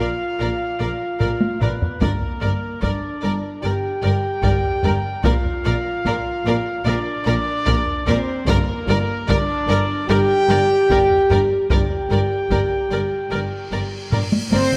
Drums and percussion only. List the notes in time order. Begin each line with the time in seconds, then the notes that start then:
1.20 taiko low-mid
1.41 taiko high
1.61 taiko low-mid
1.82 taiko low
2.01 taiko
2.22 taiko low
2.82 taiko
4.43 taiko
4.63 taiko low
4.83 taiko low
5.24 taiko
5.45 taiko low
6.05 taiko
7.67 taiko
7.87 taiko low
8.07 taiko low
8.48 taiko
8.68 taiko low
9.29 taiko
10.90 taiko
11.10 taiko low
11.30 taiko low
11.70 taiko
11.90 taiko low
12.51 taiko
14.12 taiko low-mid
14.32 taiko high
14.52 taiko high
14.72 taiko low